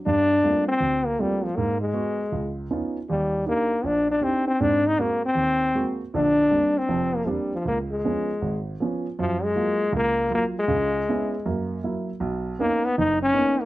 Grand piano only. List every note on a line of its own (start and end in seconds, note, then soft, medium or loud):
0.06 0.38 G2 medium
0.43 0.69 G3 soft
0.43 0.69 A3 soft
0.43 0.69 A#3 soft
0.43 0.69 C4 soft
0.43 0.69 F4 medium
0.80 1.13 D2 medium
1.19 1.45 G3 medium
1.19 1.45 A3 soft
1.19 1.45 A#3 soft
1.19 1.45 C4 soft
1.19 1.45 F4 medium
1.58 1.90 G#2 medium
1.93 2.20 G#3 soft
1.93 2.20 B3 soft
1.93 2.20 F#4 medium
2.32 2.65 C#2 medium
2.71 2.96 B3 soft
2.71 2.96 C#4 soft
2.71 2.96 D#4 soft
2.71 2.96 F4 medium
3.10 3.42 D#2 medium
3.46 3.72 D4 soft
3.46 3.72 D#4 soft
3.46 3.72 G4 medium
3.84 4.17 A#1 medium
4.21 4.47 D4 medium
4.21 4.48 D#4 soft
4.21 4.48 G4 medium
4.60 4.93 G#2 medium
4.60 4.93 C4 medium
4.99 5.24 G#3 soft
4.99 5.24 A#3 soft
4.99 5.25 C4 soft
4.99 5.25 F#4 medium
5.35 5.68 D#2 medium
5.75 6.00 G#3 soft
5.75 6.01 A#3 soft
5.75 6.01 C4 soft
5.75 6.01 F#4 medium
6.14 6.46 A#1 medium
6.14 6.46 D3 medium
6.51 6.76 G3 soft
6.51 6.77 A#3 soft
6.51 6.77 C4 soft
6.51 6.77 D4 medium
6.89 7.21 F1 medium
6.89 7.21 F2 medium
7.26 7.52 G3 soft
7.26 7.52 A#3 soft
7.26 7.52 C4 soft
7.26 7.53 D4 medium
7.65 7.98 C#2 medium
8.04 8.29 F3 soft
8.04 8.29 B3 soft
8.04 8.30 C#4 medium
8.42 8.74 G#1 medium
8.80 9.05 F3 medium
8.80 9.05 B3 soft
8.80 9.06 C#4 medium
9.19 9.50 F#2 medium
9.56 9.81 F#3 soft
9.56 9.81 A#3 soft
9.56 9.81 F4 medium
9.92 10.25 C#2 medium
10.30 10.56 F#3 medium
10.30 10.57 A#3 soft
10.30 10.57 F4 medium
10.68 11.01 C#2 medium
10.68 11.01 C#3 medium
11.09 11.33 B3 soft
11.09 11.34 C#4 soft
11.09 11.34 E4 medium
11.46 11.78 F#2 medium
11.46 11.78 A#3 medium
11.84 12.09 F#3 medium
11.84 12.09 A#3 soft
11.84 12.09 E4 medium
12.20 12.53 B1 medium
12.59 12.84 A#3 medium
12.59 12.84 B3 soft
12.59 12.85 C#4 medium
12.59 12.85 D#4 medium
12.98 13.30 F#1 medium
13.33 13.60 A#3 medium
13.33 13.60 B3 medium
13.33 13.60 C#4 soft
13.33 13.60 D#4 medium